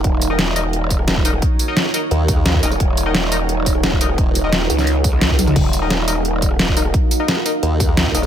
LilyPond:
<<
  \new Staff \with { instrumentName = "Ambient pad" } { \time 4/4 \key ees \minor \tempo 4 = 174 << { des''1~ | des''1~ | des''1~ | des''1 |
f''1~ | f''1 | } \\ { <ees' ges' bes'>1~ | <ees' ges' bes'>1~ | <ees' ges' bes'>1~ | <ees' ges' bes'>1~ |
<ees' ges' bes'>1~ | <ees' ges' bes'>1 | } >> }
  \new Staff \with { instrumentName = "Synth stab" } { \time 4/4 \key ees \minor r8. <ees' bes' ees''>16 r8 <ees' bes' ees''>16 r4. r16 <ees' bes' ees''>16 r16 | r8. <ees' bes' ees''>16 r8 <ees' bes' ees''>16 r4. r16 <ees' bes' ees''>16 r16 | r8. <ees' bes' ees''>16 r8 <ees' bes' ees''>16 r4. r16 <ees' bes' ees''>16 r16 | r8. <ees' bes' ees''>16 r2. |
r8. <ees' bes' ees''>16 r8 <ees' bes' ees''>16 r4. r16 <ees' bes' ees''>16 r16 | r8. <ees' bes' ees''>16 r8 <ees' bes' ees''>16 r4. r16 <ees' bes' ees''>16 r16 | }
  \new Staff \with { instrumentName = "Wobble bass" } { \clef bass \time 4/4 \key ees \minor r1 | r2 ees,4. r8 | r1 | ees,,4. r2 r8 |
r1 | r2 ees,4. r8 | }
  \new Staff \with { instrumentName = "Wobble bass" } { \clef bass \time 4/4 \key ees \minor ees,,1 | r2. r8 ees,,8 | ees,,1 | r4. des,2~ des,8 |
ees,,1 | r2. r8 ees,,8 | }
  \new DrumStaff \with { instrumentName = "Drums" } \drummode { \time 4/4 <hh bd>8 <hh tamb>8 <hh sn>8 <hh tamb>8 hh8 <hh bd tamb>16 ss16 <hh sn>16 bd16 <hh tamb>16 ss16 | <hh bd>8 <hh tamb>8 <hh sn>16 ss16 <hho tamb>8 hh8 <hh bd tamb>16 ss16 <hh sn>16 bd16 <hh ss tamb>16 <ss tamb>16 | <hh bd>8 <hh tamb>8 <hh sn>8 <hh tamb>8 hh8 <hh bd tamb>16 ss16 <hh sn>16 bd16 <hh tamb>16 ss16 | <hh bd>8 <hh tamb>8 <hh sn>16 ss16 <hho tamb>16 <sn tamb>16 <hh tamb>8 <hh bd tamb>16 ss16 <hh sn>16 bd16 <hh ss tamb tommh>16 <ss tamb toml>16 |
<cymc hh bd>8 <hh tamb>8 <hh sn>8 <hh tamb>8 hh8 <hh bd tamb>16 ss16 <hh sn>16 bd16 <hh tamb>16 ss16 | <hh bd>8 <hh tamb>8 <hh sn>16 ss16 <hho tamb>8 hh8 <hh bd tamb>16 ss16 <hh sn>16 bd16 <hh ss tamb>16 <ss tamb>16 | }
>>